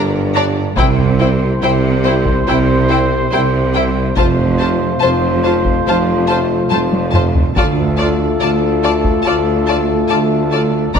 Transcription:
0.00 0.67 G1 medium
0.00 0.67 G2 medium
0.00 0.60 G3 medium
0.00 0.60 D4 medium
0.00 0.49 A#4 medium
0.34 0.42 D4 medium
0.34 0.44 D5 medium
0.34 0.43 A#5 medium
0.77 1.52 C2 loud
0.77 1.52 C2 medium
0.77 1.52 C3 medium
0.77 4.13 G3 medium
0.77 0.85 E4 medium
0.77 4.13 E4 medium
0.77 4.13 C5 medium
0.77 0.85 C5 medium
0.77 0.86 G5 medium
0.77 taiko loud
0.98 taiko low-mid medium
1.19 1.27 E4 medium
1.19 1.29 C5 medium
1.19 1.28 G5 medium
1.61 2.37 C2 medium
1.61 2.37 C3 medium
1.61 1.69 E4 medium
1.61 1.71 C5 medium
1.61 1.71 G5 medium
2.04 2.13 E4 medium
2.04 2.12 C5 medium
2.04 2.13 G5 medium
2.26 taiko medium
2.47 3.22 C2 medium
2.47 3.22 C3 medium
2.47 2.55 E4 medium
2.47 2.55 C5 medium
2.47 2.57 G5 medium
2.90 2.98 E4 medium
2.90 2.99 C5 medium
2.90 2.98 G5 medium
3.32 4.07 C2 medium
3.32 4.07 C3 medium
3.32 3.40 E4 medium
3.32 3.40 C5 medium
3.32 3.41 G5 medium
3.74 3.83 E4 medium
3.74 3.83 C5 medium
3.74 3.82 G5 medium
4.16 4.92 F1 loud
4.16 4.92 F1 medium
4.16 4.92 F2 medium
4.16 7.39 A3 medium
4.16 7.39 F4 medium
4.16 4.25 F4 medium
4.16 4.25 C5 medium
4.16 7.24 C5 medium
4.16 4.24 A5 medium
4.16 taiko loud
4.39 taiko low-mid medium
4.59 4.68 F4 medium
4.59 4.68 C5 medium
4.59 4.67 A5 medium
5.01 5.76 F1 medium
5.01 5.77 F1 medium
5.01 5.77 F2 medium
5.01 5.10 F4 medium
5.01 5.10 C5 medium
5.01 5.09 A5 medium
5.44 5.53 F4 medium
5.44 5.53 C5 medium
5.44 5.52 A5 medium
5.66 taiko medium
5.87 6.61 F1 medium
5.87 6.61 F2 medium
5.87 5.96 F4 medium
5.87 5.96 C5 medium
5.87 5.95 A5 medium
6.28 6.37 F4 medium
6.28 6.38 C5 medium
6.28 6.36 A5 medium
6.70 7.46 F1 medium
6.70 7.46 F2 medium
6.70 6.80 F4 medium
6.70 6.80 C5 medium
6.70 6.78 A5 medium
6.70 taiko high medium
6.92 taiko high medium
7.13 7.22 F4 medium
7.13 7.22 C5 medium
7.13 7.21 A5 medium
7.13 taiko low-mid medium
7.35 taiko low loud
7.56 8.30 D2 loud
7.56 8.31 D2 medium
7.56 10.91 A3 medium
7.56 10.90 F4 medium
7.56 7.65 F4 medium
7.56 10.91 A4 medium
7.56 7.65 D5 medium
7.56 7.64 A5 medium
7.56 taiko loud
7.78 taiko low-mid soft
7.97 8.08 F4 medium
7.97 8.07 D5 medium
7.97 8.05 A5 medium
8.41 9.15 D2 medium
8.41 8.50 F4 medium
8.41 8.49 D5 medium
8.41 8.50 A5 medium
8.83 8.92 F4 medium
8.83 8.92 D5 medium
8.83 8.91 A5 medium
9.05 taiko medium
9.24 10.00 D2 medium
9.24 9.34 F4 medium
9.24 9.35 D5 medium
9.24 9.32 A5 medium
9.67 9.77 F4 medium
9.67 9.76 D5 medium
9.67 9.75 A5 medium
10.09 10.84 D2 medium
10.09 10.85 D2 medium
10.09 10.20 F4 medium
10.09 10.18 D5 medium
10.09 10.17 A5 medium
10.51 10.62 F4 medium
10.51 10.60 D5 medium
10.51 10.59 A5 medium
10.94 10.99 G1 medium
10.94 10.99 G2 medium
10.94 10.99 G3 medium
10.94 10.99 D4 medium
10.94 10.99 A#4 medium
10.94 10.99 D5 medium
10.94 10.99 A#5 medium
10.94 taiko medium

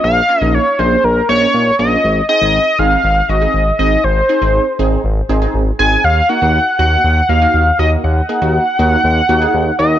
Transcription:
0.04 0.21 A#1 loud
0.04 0.41 F5 loud
0.29 0.40 A#3 medium
0.29 0.40 C#4 medium
0.29 0.40 F4 medium
0.41 0.59 A#1 loud
0.41 0.64 A#3 medium
0.41 0.64 C#4 medium
0.41 0.64 D#4 medium
0.41 0.56 D#5 loud
0.54 0.80 C#5 loud
0.79 0.96 A#1 medium
0.79 1.01 A#3 medium
0.79 1.01 C#4 medium
0.79 1.01 G#4 medium
0.79 1.06 C5 medium
1.04 1.21 A#1 loud
1.04 1.28 A#4 medium
1.29 1.46 A#1 loud
1.29 1.40 A#3 medium
1.29 1.40 C#4 medium
1.29 1.40 D#4 medium
1.29 1.75 C#5 loud
1.42 1.64 A#3 medium
1.42 1.64 C#4 medium
1.42 1.64 D#4 medium
1.54 1.71 A#1 loud
1.79 1.96 A#1 loud
1.79 2.01 A#3 medium
1.79 2.01 C#4 medium
1.79 2.01 F4 medium
1.79 2.26 D#5 loud
2.04 2.21 G#1 loud
2.29 2.40 C4 medium
2.29 2.40 D#4 medium
2.29 2.40 G#4 medium
2.29 2.80 D#5 loud
2.41 2.59 G#1 loud
2.41 2.64 C4 medium
2.41 2.64 D#4 medium
2.41 2.64 G#4 medium
2.79 2.96 G#1 medium
2.79 3.01 C4 medium
2.79 3.01 D#4 medium
2.79 3.01 G#4 medium
2.79 3.30 F5 loud
3.04 3.21 G#1 loud
3.29 3.46 G#1 loud
3.29 3.40 C4 medium
3.29 3.40 D#4 medium
3.29 3.40 F#4 medium
3.29 3.78 D#5 loud
3.42 3.64 C4 medium
3.42 3.64 D#4 medium
3.42 3.64 G#4 medium
3.54 3.71 G#1 loud
3.79 3.96 G#1 loud
3.79 4.01 C4 medium
3.79 4.01 D#4 medium
3.79 4.01 G#4 medium
3.79 4.06 D#5 medium
4.04 4.21 G#1 loud
4.04 5.04 C5 medium
4.29 4.40 C4 medium
4.29 4.40 D#4 medium
4.29 4.40 G#4 medium
4.42 4.59 G#1 loud
4.42 4.64 C4 medium
4.42 4.64 D#4 medium
4.42 4.64 G#4 medium
4.79 4.97 G#1 loud
4.79 5.01 C4 medium
4.79 5.01 D#4 medium
4.79 5.01 G#4 loud
5.04 5.21 G#1 loud
5.29 5.46 G#1 loud
5.29 5.40 C4 medium
5.29 5.40 D#4 medium
5.29 5.40 G#4 loud
5.42 5.64 C4 medium
5.42 5.64 D#4 medium
5.42 5.64 G#4 medium
5.54 5.71 G#1 loud
5.79 5.97 G#1 loud
5.79 6.01 C4 medium
5.79 6.01 D#4 medium
5.79 6.01 G#4 medium
5.79 6.06 G#5 loud
6.04 6.21 D#2 loud
6.04 6.31 F5 loud
6.29 6.40 A#3 medium
6.29 6.40 D#4 medium
6.29 6.40 F#4 medium
6.29 6.78 F#5 loud
6.42 6.59 D#2 medium
6.42 6.64 A#3 medium
6.42 6.64 D#4 medium
6.42 6.64 F#4 medium
6.79 6.96 D#2 medium
6.79 7.01 A#3 medium
6.79 7.01 D#4 medium
6.79 7.01 F#4 medium
6.79 7.30 F#5 loud
7.04 7.21 D#2 loud
7.29 7.46 D#2 loud
7.29 7.40 A#3 medium
7.29 7.40 D#4 medium
7.29 7.40 F#4 medium
7.29 7.79 F5 loud
7.42 7.64 A#3 medium
7.42 7.64 D#4 medium
7.42 7.64 F#4 medium
7.54 7.71 D#2 loud
7.79 7.96 D#2 loud
7.79 8.01 A#3 medium
7.79 8.01 D#4 medium
7.79 8.01 F#4 medium
7.79 7.90 D#5 medium
8.04 8.21 D#2 loud
8.04 9.75 F#5 loud
8.29 8.40 A#3 medium
8.29 8.40 D#4 medium
8.29 8.40 G#4 medium
8.41 8.59 D#2 medium
8.41 8.64 A#3 medium
8.41 8.64 D#4 medium
8.41 8.64 F#4 medium
8.79 8.96 D#2 loud
8.79 9.01 A#3 medium
8.79 9.01 D#4 medium
8.79 9.01 F#4 loud
9.04 9.21 D#2 loud
9.29 9.46 D#2 medium
9.29 9.40 A#3 medium
9.29 9.40 D#4 medium
9.29 9.40 F#4 loud
9.42 9.64 A#3 medium
9.42 9.64 D#4 medium
9.42 9.64 G#4 medium
9.54 9.71 D#2 loud
9.79 9.96 D#2 loud
9.79 9.99 A#3 medium
9.79 9.99 D#4 medium
9.79 9.99 F#4 medium
9.79 9.99 D#5 loud

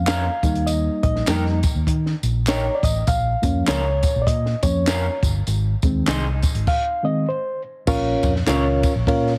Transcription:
0.00 0.27 F2 medium
0.07 0.24 A#3 medium
0.07 0.24 C#4 medium
0.07 0.24 F4 medium
0.07 0.24 A#4 loud
0.07 0.69 F5 loud
0.07 snare loud
0.07 clap loud
0.07 closed hi-hat medium
0.07 tambourine medium
0.43 0.87 D#2 medium
0.43 1.27 G3 medium
0.43 1.27 A#3 medium
0.43 1.27 D#4 medium
0.43 kick medium
0.43 closed hi-hat medium
0.43 tambourine medium
0.55 closed hi-hat soft
0.66 1.02 D#5 medium
0.66 closed hi-hat medium
0.66 tambourine medium
1.03 1.21 A#1 medium
1.03 1.59 D#5 medium
1.03 kick medium
1.03 closed hi-hat medium
1.16 snare soft
1.27 1.62 F2 loud
1.27 1.60 G3 soft
1.27 1.44 A#3 medium
1.27 1.60 A#3 soft
1.27 1.44 D#4 medium
1.27 1.60 D#4 medium
1.27 1.44 G4 medium
1.27 1.45 A#4 medium
1.27 snare loud
1.27 clap medium
1.27 closed hi-hat medium
1.27 tambourine medium
1.46 snare soft
1.63 kick loud
1.63 closed hi-hat medium
1.63 tambourine medium
1.75 1.84 D#2 medium
1.87 2.13 D#3 loud
1.87 kick medium
1.87 closed hi-hat medium
2.06 snare soft
2.23 2.67 A#1 medium
2.23 closed hi-hat medium
2.23 tambourine medium
2.47 2.64 A#3 medium
2.47 2.64 D#4 medium
2.47 2.65 G4 medium
2.47 2.65 A#4 medium
2.47 2.77 C#5 medium
2.47 snare loud
2.47 clap loud
2.47 closed hi-hat medium
2.47 tambourine loud
2.75 2.83 D5 medium
2.83 3.01 A1 medium
2.83 3.09 D#5 loud
2.83 kick medium
2.83 closed hi-hat medium
2.83 tambourine medium
3.07 3.34 A#1 loud
3.07 3.64 F5 loud
3.07 kick loud
3.07 closed hi-hat medium
3.07 tambourine medium
3.42 3.61 F2 medium
3.42 3.79 F3 medium
3.42 3.80 A#3 medium
3.42 3.80 C#4 medium
3.42 kick medium
3.42 closed hi-hat medium
3.42 tambourine soft
3.67 4.03 C#2 medium
3.67 3.84 A#3 medium
3.67 3.84 C#4 medium
3.67 3.84 F4 loud
3.67 3.84 A#4 loud
3.67 4.24 C#5 medium
3.67 snare loud
3.67 clap medium
3.67 closed hi-hat medium
3.67 tambourine medium
4.03 kick loud
4.03 closed hi-hat medium
4.03 tambourine medium
4.16 4.24 A#1 medium
4.22 4.27 D5 medium
4.27 4.53 A#2 loud
4.27 4.61 D#5 medium
4.27 kick medium
4.27 closed hi-hat loud
4.46 snare soft
4.63 5.07 F2 medium
4.63 4.85 F3 soft
4.63 4.85 A#3 soft
4.63 4.85 C#4 medium
4.63 5.19 C#5 medium
4.63 kick medium
4.63 closed hi-hat medium
4.63 tambourine medium
4.87 5.04 A#3 medium
4.87 5.04 C#4 medium
4.87 5.04 F4 medium
4.87 5.05 A#4 medium
4.87 snare loud
4.87 clap medium
4.87 closed hi-hat medium
4.87 tambourine loud
5.23 5.41 G1 medium
5.23 kick loud
5.23 closed hi-hat medium
5.23 tambourine medium
5.47 5.74 G#1 loud
5.47 closed hi-hat medium
5.47 tambourine medium
5.82 6.01 D#2 medium
5.82 6.20 D#3 medium
5.82 6.20 G#3 medium
5.82 6.20 C4 medium
5.82 kick medium
5.82 closed hi-hat medium
5.82 tambourine soft
6.06 6.42 C2 medium
6.06 6.24 C4 medium
6.06 6.24 D#4 loud
6.06 6.24 G#4 loud
6.06 6.25 C5 loud
6.06 snare loud
6.06 clap loud
6.06 closed hi-hat loud
6.06 tambourine medium
6.43 kick loud
6.43 closed hi-hat medium
6.43 tambourine medium
6.55 6.64 G#1 medium
6.55 closed hi-hat medium
6.67 7.05 F5 loud
6.67 kick loud
6.67 crash medium
7.03 7.25 D#3 soft
7.03 7.25 G#3 soft
7.03 7.25 C4 medium
7.03 7.29 D#5 medium
7.29 7.62 C5 medium
7.87 8.14 A#1 loud
7.87 8.80 A#2 medium
7.87 8.32 C#4 loud
7.87 8.32 F4 loud
7.87 8.32 A#4 medium
7.87 8.33 C#5 loud
7.87 8.32 F5 loud
7.87 kick loud
7.87 crash loud
7.87 tambourine medium
8.23 8.41 F2 medium
8.23 kick medium
8.23 ride medium
8.23 tambourine soft
8.36 snare soft
8.47 8.82 C#2 medium
8.47 8.64 C#4 medium
8.47 8.92 C#4 medium
8.47 8.92 F4 medium
8.47 8.64 F4 loud
8.47 8.92 A#4 medium
8.47 8.64 A#4 medium
8.47 8.92 C#5 medium
8.47 8.65 C#5 medium
8.47 8.92 F5 medium
8.47 snare loud
8.47 clap medium
8.47 ride medium
8.47 tambourine medium
8.83 kick loud
8.83 ride medium
8.83 tambourine medium
8.95 9.04 A#1 medium
9.07 9.34 A#2 loud
9.07 9.32 C#4 medium
9.07 9.32 F4 medium
9.07 9.32 A#4 medium
9.07 9.32 C#5 medium
9.07 9.32 F5 loud
9.07 kick medium
9.07 ride medium
9.27 snare soft

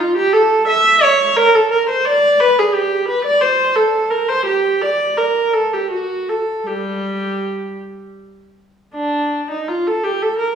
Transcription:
0.00 0.16 F4 medium
0.16 0.33 G4 loud
0.33 0.68 A4 loud
0.67 1.01 E5 loud
1.02 1.36 C#5 loud
1.36 1.53 A#4 loud
1.55 1.71 A4 medium
1.71 1.88 A#4 medium
1.89 2.05 C5 medium
2.05 2.40 D5 loud
2.40 2.57 B4 loud
2.58 2.75 G#4 medium
2.74 3.09 G4 medium
3.08 3.25 B4 medium
3.25 3.42 D5 loud
3.41 3.76 C5 medium
3.76 4.10 A4 medium
4.10 4.27 A#4 medium
4.29 4.46 C5 medium
4.46 4.80 G4 medium
4.81 5.16 D5 medium
5.17 5.53 A#4 medium
5.53 5.71 A4 medium
5.73 5.91 G4 medium
5.91 6.27 F#4 medium
6.29 6.66 A4 medium
6.67 7.76 G3 medium
6.67 7.80 G4 medium
8.95 9.46 D4 medium
9.51 9.69 D#4 medium
9.68 9.86 F4 medium
9.87 10.04 A4 medium
10.04 10.22 G4 medium
10.22 10.39 A4 medium
10.39 10.55 A#4 medium

